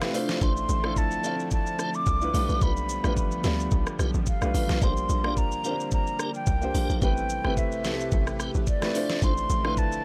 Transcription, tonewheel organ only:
0.14 0.39 D4 medium
0.14 0.39 F4 medium
0.14 0.40 C5 medium
0.41 0.53 D4 loud
0.41 0.53 F4 medium
0.41 0.53 C5 loud
0.84 0.93 D4 medium
0.84 0.93 F4 medium
0.84 0.94 C5 medium
1.24 1.35 D4 medium
1.24 1.35 F4 medium
1.24 1.36 C5 medium
1.79 1.90 D4 medium
1.79 1.91 F4 medium
1.79 1.91 C5 medium
2.34 2.59 F4 medium
2.34 2.60 G4 medium
2.34 2.60 B4 medium
2.61 2.73 F4 medium
2.61 2.73 G4 medium
2.61 2.73 B4 loud
3.04 3.14 F4 medium
3.04 3.14 G4 medium
3.04 3.14 B4 medium
3.44 3.56 F4 medium
3.44 3.56 G4 medium
3.44 3.56 B4 medium
3.99 4.11 F4 medium
3.99 4.11 G4 medium
3.99 4.11 B4 medium
4.54 4.80 F4 medium
4.54 4.80 G4 medium
4.54 4.80 B4 medium
4.81 4.93 D4 medium
4.81 4.93 G4 medium
4.81 4.93 A#4 loud
5.24 5.34 D4 medium
5.24 5.34 G4 medium
5.24 5.34 A#4 medium
5.64 5.76 D4 medium
5.64 5.76 G4 medium
5.64 5.76 A#4 medium
6.19 6.31 D4 medium
6.19 6.31 G4 medium
6.19 6.31 A#4 medium
6.74 7.00 D4 medium
6.74 7.00 G4 medium
6.74 7.00 A#4 medium
7.02 7.13 C4 medium
7.02 7.13 G4 medium
7.02 7.14 B4 loud
7.44 7.54 C4 medium
7.44 7.54 G4 medium
7.44 7.54 B4 medium
7.84 7.96 C4 medium
7.84 7.96 G4 medium
7.84 7.96 B4 medium
8.39 8.51 C4 medium
8.39 8.51 G4 medium
8.39 8.51 B4 medium
8.94 9.20 D4 medium
8.94 9.20 F4 medium
8.94 9.20 C5 medium
9.22 9.34 D4 medium
9.22 9.34 F4 medium
9.22 9.34 C5 loud
9.64 9.74 D4 medium
9.64 9.74 F4 medium
9.64 9.74 C5 medium

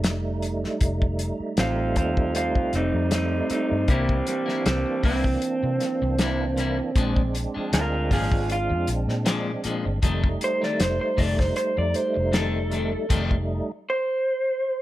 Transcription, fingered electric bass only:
0.00 0.65 F1 medium
0.81 1.30 F1 medium
1.40 muted fingered electric bass stroke soft
1.58 1.96 A1 medium
1.96 2.56 D#2 medium
2.56 2.70 C2 medium
2.73 2.91 F1 medium
2.94 3.40 F2 medium
3.50 muted fingered electric bass stroke soft
3.72 3.86 G2 medium
3.89 4.20 C2 medium
4.66 4.83 C2 loud
5.04 5.36 C2 medium
5.63 5.78 C3 medium
6.02 6.80 C2 medium
6.96 7.45 A#1 medium
7.56 muted fingered electric bass stroke soft
7.73 8.13 D2 medium
8.11 8.72 G#1 medium
8.70 8.85 F2 medium
8.88 9.05 A#1 medium
9.08 9.55 A#2 medium
9.65 muted fingered electric bass stroke soft
9.86 10.00 G1 medium
10.03 10.35 F1 loud
10.80 10.97 F1 loud
11.18 11.50 F1 loud
11.78 11.92 F2 medium
12.17 12.95 F1 medium
13.10 13.59 F1 medium

